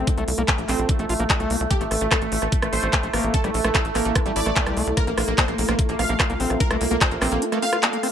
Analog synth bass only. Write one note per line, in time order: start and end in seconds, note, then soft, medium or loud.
0.17 0.24 C2 medium
0.28 0.34 C2 loud
0.38 0.44 C2 medium
0.58 0.64 A#1 medium
0.69 0.75 A#1 loud
0.79 0.85 A#1 medium
0.99 1.05 A#1 medium
1.09 1.15 A#1 loud
1.20 1.26 A#1 medium
1.40 1.46 C2 medium
1.50 1.56 C2 loud
1.60 1.67 C2 medium
1.81 1.87 A1 medium
1.91 1.97 A1 loud
2.01 2.07 A1 medium
2.22 2.28 A1 medium
2.32 2.38 A1 loud
2.42 2.48 A1 medium
2.62 2.69 A1 medium
2.73 2.79 A1 loud
2.83 2.89 A1 medium
3.03 3.09 A#1 medium
3.13 3.20 A1 loud
3.24 3.30 A1 medium
3.44 3.50 A#1 medium
3.54 3.60 A#1 loud
3.64 3.71 A#1 medium
3.85 3.91 A1 medium
3.95 4.01 A1 loud
4.05 4.11 A1 medium
4.26 4.32 A1 medium
4.36 4.42 A1 loud
4.46 4.52 A1 medium
4.66 4.73 C2 medium
4.77 4.83 C2 loud
4.87 4.93 C2 medium
5.07 5.13 A#1 medium
5.18 5.24 A#1 loud
5.28 5.34 A#1 medium
5.48 5.54 A#1 medium
5.58 5.64 A#1 loud
5.69 5.75 A#1 loud
5.89 5.95 A#1 medium
5.99 6.05 A#1 loud
6.09 6.15 A#1 medium
6.30 6.36 C2 medium
6.40 6.46 A#1 loud
6.50 6.56 A#1 medium
6.71 6.77 C2 medium
6.81 6.87 C2 loud
6.91 6.97 C2 medium
7.11 7.18 A#1 medium
7.22 7.28 A#1 loud
7.32 7.38 A#1 medium